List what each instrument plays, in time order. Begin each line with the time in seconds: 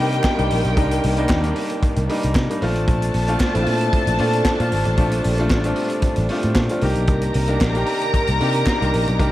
Already playing: string section C3 D#3 A#3, grand piano G3 A#3 D4, violin section G4 G5
0.00 picked electric bass C3, grand piano D#4
0.12 closed hi-hat
0.24 kick, snare, clap
0.38 picked electric bass C2, grand piano G3 A#3 D4 D#4, closed hi-hat
0.50 picked electric bass A#1, open hi-hat
0.65 picked electric bass B1, closed hi-hat
0.76 picked electric bass C2, grand piano G3 A#3 D4 D#4, kick, closed hi-hat
0.91 closed hi-hat
1.04 picked electric bass C2, open hi-hat
1.17 grand piano G3 A#3 D4 D#4, closed hi-hat
1.29 picked electric bass D#2, kick, snare, clap
1.44 grand piano G3 A#3 D4 D#4, closed hi-hat
1.56 open hi-hat
1.70 closed hi-hat
1.83 kick, closed hi-hat
1.96 picked electric bass C2, closed hi-hat
2.09 grand piano G3 A#3 D4 D#4, open hi-hat
2.23 picked electric bass C2, closed hi-hat
2.35 picked electric bass C3, kick, snare, clap
2.50 grand piano G3 A#3 D4 D#4, closed hi-hat
2.61 picked electric bass A#1, string section A#2 A3 D4, grand piano A3 C4 D4 F4, violin section A4 A5, open hi-hat
2.76 picked electric bass A1, closed hi-hat
2.87 picked electric bass A#1, kick, closed hi-hat
3.02 closed hi-hat
3.14 picked electric bass A#1, open hi-hat
3.28 grand piano A3 C4 D4 F4, closed hi-hat
3.40 kick, snare, clap
3.54 picked electric bass A#1, grand piano A3 C4 D4 E4, closed hi-hat
3.62 grand piano F4
3.66 picked electric bass A#2, open hi-hat
3.81 closed hi-hat
3.93 kick, closed hi-hat
4.07 picked electric bass A#1, closed hi-hat
4.18 picked electric bass A#2, grand piano A3 C4 D4 F4, open hi-hat
4.33 closed hi-hat
4.45 kick, snare, clap
4.59 picked electric bass A#2, grand piano A3 C4 D4 F4, closed hi-hat
4.72 picked electric bass G#1, string section G3, open hi-hat
4.85 picked electric bass A1, closed hi-hat
4.97 picked electric bass A#1, grand piano A3 C4 D4 F4, kick, closed hi-hat
5.11 closed hi-hat
5.24 picked electric bass A#1, open hi-hat
5.38 grand piano A3 C4 D4 F4, closed hi-hat
5.50 picked electric bass A1, kick, snare, clap
5.64 grand piano A3 C4 D4 F4, closed hi-hat
5.76 open hi-hat
5.90 closed hi-hat
6.02 kick, closed hi-hat
6.16 picked electric bass A1, closed hi-hat
6.29 grand piano A3 C4 D4 F4, open hi-hat
6.43 picked electric bass A2, closed hi-hat
6.55 picked electric bass A#2, kick, snare, clap
6.69 grand piano A3 C4 D4 F4, closed hi-hat
6.81 picked electric bass C2, string section C3 D#3 A#3, grand piano A#3 D4 D#4 G4, violin section A#4 A#5, open hi-hat
6.95 picked electric bass B1, closed hi-hat
7.07 picked electric bass C2, kick, closed hi-hat
7.21 closed hi-hat
7.34 picked electric bass C2, open hi-hat
7.48 grand piano A#3 D4 D#4 G4, closed hi-hat
7.61 picked electric bass A#1, kick, snare, clap
7.75 grand piano A#3 D4 D#4 G4, closed hi-hat
7.86 open hi-hat
8.01 closed hi-hat
8.14 kick, closed hi-hat
8.27 picked electric bass C2, closed hi-hat
8.40 picked electric bass C3, grand piano A#3 D4 D#4 G4, open hi-hat
8.54 closed hi-hat
8.66 kick, snare, clap
8.81 picked electric bass C2, grand piano A#3 D4 D#4 G4, closed hi-hat
8.92 picked electric bass A#1, string section G3, open hi-hat
9.07 picked electric bass B1, closed hi-hat
9.20 picked electric bass C2, grand piano A#3 D4 D#4 G4, kick, closed hi-hat